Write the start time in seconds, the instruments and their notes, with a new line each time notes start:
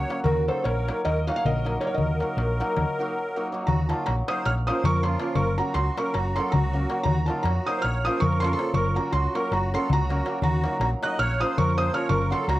Already playing: accordion C#5, felt piano F#5
0.02 darbuka tek
0.09 hammered dulcimer F#3 A#3 C#4 F#4, darbuka tek
0.24 fingered electric bass D#2, accordion F#4, felt piano A#4, darbuka dum
0.47 hammered dulcimer F#3 A#3 D#4 F#4, accordion A4, felt piano C5, darbuka tek
0.57 darbuka tek
0.64 fingered electric bass A#1, accordion A#4, felt piano C#5, darbuka tek
0.88 hammered dulcimer F#3 A#3 D#4 F#4, darbuka tek
1.04 fingered electric bass D#2, accordion A#4, felt piano D#5, darbuka tek
1.27 hammered dulcimer F#3 A#3 D#4 F#4, accordion C#5, felt piano F5, darbuka tek
1.31 accordion C#5 D#5, felt piano F#5
1.36 felt piano F5
1.44 fingered electric bass A#1, accordion A#4, felt piano D#5, darbuka dum
1.56 darbuka tek
1.65 hammered dulcimer F#3 A#3 D#4 F#4, darbuka tek
1.74 darbuka tek
1.81 hammered dulcimer F#3 A#3 D#4 F#4, accordion A#4, felt piano C#5, darbuka tek
1.87 felt piano C#5
1.94 fingered electric bass D#2, accordion A#4, felt piano D#5, darbuka dum
2.09 darbuka tek
2.20 hammered dulcimer F#3 A#3 D#4 F#4, darbuka tek
2.29 darbuka tek
2.37 fingered electric bass A#1, darbuka tek
2.49 darbuka tek
2.60 hammered dulcimer F#3 A#3 D#4 F#4, darbuka tek
2.77 fingered electric bass D#2, darbuka tek, darbuka dum
2.99 hammered dulcimer F#3 A#3 D#4 F#4
3.36 hammered dulcimer F#3 A#3 D#4 F#4
3.52 hammered dulcimer F#3 A#3 D#4 F#4
3.66 fingered electric bass D#2, accordion F#4, felt piano A#5, darbuka dum
3.80 darbuka tek
3.88 hammered dulcimer F#3 A#3 D#4 F#4 A#4, accordion F4, felt piano A5, darbuka tek
3.98 darbuka tek
4.05 fingered electric bass A#1, accordion F#4, felt piano A#5, darbuka tek
4.28 hammered dulcimer F#3 A#3 D#4 F#4 A#4, accordion C5, felt piano D#6, darbuka tek
4.37 darbuka tek
4.44 fingered electric bass A#1, accordion C#5, felt piano F6, darbuka tek
4.67 hammered dulcimer F3 A#3 C#4 F4 A#4, accordion C5, felt piano D#6, darbuka tek
4.84 fingered electric bass F2, accordion A#4, felt piano C#6, darbuka dum
4.93 darbuka tek
5.03 hammered dulcimer F3 A#3 C#4 F4 A#4, accordion F4, felt piano C6, darbuka tek
5.20 hammered dulcimer F3 A#3 C#4 F4 A#4, darbuka tek
5.35 fingered electric bass F#1, accordion A#4, felt piano C#6, darbuka dum
5.47 darbuka tek
5.58 hammered dulcimer F#3 A#3 C#4 F#4 A#4, accordion F#4, felt piano A#5
5.66 darbuka tek
5.74 fingered electric bass C#2, accordion F#4, felt piano C6, darbuka tek
5.97 hammered dulcimer F#3 A#3 C#4 F#4 A#4, accordion A#4, felt piano C#6, darbuka tek
6.06 darbuka tek
6.14 fingered electric bass F#1, accordion F#4, felt piano A#5, darbuka tek
6.36 hammered dulcimer F#3 A#3 C#4, accordion A4, felt piano C6, darbuka tek
6.40 hammered dulcimer F#4 A#4
6.52 fingered electric bass C#2, accordion F#4, felt piano A#5, darbuka dum
6.64 darbuka tek
6.73 hammered dulcimer F#3 A#3 C#4 F#4 A#4
6.89 hammered dulcimer F#3 A#3 C#4 F#4 A#4, darbuka tek
7.03 fingered electric bass D#2, accordion F#4, felt piano A#5, darbuka dum
7.18 darbuka tek
7.26 hammered dulcimer F#3 A#3 D#4 F#4, accordion F4, felt piano A5, darbuka tek
7.30 hammered dulcimer A#4
7.37 darbuka tek
7.43 fingered electric bass F2, accordion F#4, felt piano A#5, darbuka tek
7.66 hammered dulcimer F#3 A#3 D#4 F#4 A#4, accordion C5, felt piano D#6, darbuka tek
7.77 darbuka tek
7.82 fingered electric bass A#1, accordion C#5, felt piano F6, darbuka tek
8.05 hammered dulcimer F3 A#3 C#4 F4 A#4, accordion C5, felt piano D#6, darbuka tek
8.20 fingered electric bass F2, accordion A#4, felt piano C#6, darbuka dum
8.33 darbuka tek
8.40 hammered dulcimer F3 A#3 C#4, accordion A4, felt piano C6, darbuka tek
8.44 hammered dulcimer F4 A#4, accordion A#4, felt piano C#6
8.53 accordion A4, felt piano C6
8.59 hammered dulcimer F3 A#3 C#4 F4 A#4, darbuka tek
8.74 fingered electric bass F#1, accordion A#4, felt piano C#6, darbuka dum
8.86 darbuka tek
8.95 hammered dulcimer F#3 A#3 C#4 F#4 A#4, accordion F#4, felt piano A#5, darbuka tek
9.05 darbuka tek
9.12 fingered electric bass C#2, accordion F#4, felt piano C6, darbuka tek
9.25 darbuka tek
9.35 hammered dulcimer F#3 A#3 C#4 F#4 A#4, accordion A#4, felt piano C#6, darbuka tek
9.44 darbuka tek
9.51 fingered electric bass F#1, accordion F#4, felt piano A#5, darbuka tek
9.74 hammered dulcimer F#3 A#3 C#4 F#4 A#4, accordion A4, felt piano C6, darbuka tek
9.90 fingered electric bass C#2, accordion F#4, felt piano A#5, darbuka dum
10.09 hammered dulcimer F#3 A#3 C#4 F#4 A#4, darbuka tek
10.18 darbuka tek
10.26 hammered dulcimer F#3 A#3 C#4 F#4 A#4, darbuka tek
10.34 darbuka tek
10.41 fingered electric bass D#2, accordion F#4, felt piano A#5, darbuka dum
10.53 darbuka tek
10.63 hammered dulcimer F#3 A#3 D#4 F#4 A#4, darbuka tek
10.73 darbuka tek
10.80 fingered electric bass A#1, accordion F#4, felt piano A#5, darbuka tek
11.03 hammered dulcimer F#3 A#3 D#4 F#4 A#4, accordion D#5, felt piano F#6, darbuka tek
11.11 darbuka tek
11.19 fingered electric bass A#1, accordion C#5, felt piano F6, darbuka tek
11.40 hammered dulcimer F3 A#3 C#4 F4 A#4, accordion C5, felt piano D#6, darbuka tek
11.58 fingered electric bass F2, accordion A#4, felt piano C#6, darbuka dum
11.68 darbuka tek
11.77 hammered dulcimer F3 A#3 C#4 F4 A#4, accordion C5, felt piano D#6, darbuka tek
11.93 hammered dulcimer F3 A#3 C#4 F4 A#4, accordion C#5, felt piano F6, darbuka tek
12.09 fingered electric bass F#1, accordion A#4, felt piano C#6, darbuka dum
12.22 darbuka tek
12.30 hammered dulcimer F#3 A#3 C#4 F#4 A#4, accordion A4, felt piano C6, darbuka tek
12.41 darbuka tek
12.48 fingered electric bass C#2, accordion F#4, felt piano A#5, darbuka tek